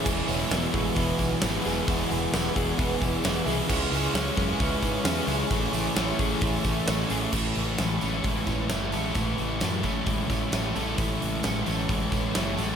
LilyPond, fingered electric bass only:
\new Staff \with { instrumentName = "Fingered electric bass" } { \clef bass \time 4/4 \key a \major \tempo 4 = 132 e,,8 e,,8 e,,8 a,,8 e,,8 b,,8 gis,,8 e,,8 | e,,8 e,,8 e,,8 e,,8 e,,8 e,,8 e,,8 c,8 | cis,8 cis,8 cis,8 fis,8 cis,8 gis,8 e,8 cis,8 | a,,8 a,,8 a,,8 a,,8 a,,8 a,,8 a,,8 a,,8 |
a,,8 a,,8 a,,8 a,,8 a,,8 a,,8 fis,,8 a,,8 | a,,8 a,,8 fis,8 a,,8 a,,8 a,,8 a,,8 a,,8 | a,,8 a,,8 a,,8 a,,8 a,,8 a,,8 fis,,8 a,,8 | }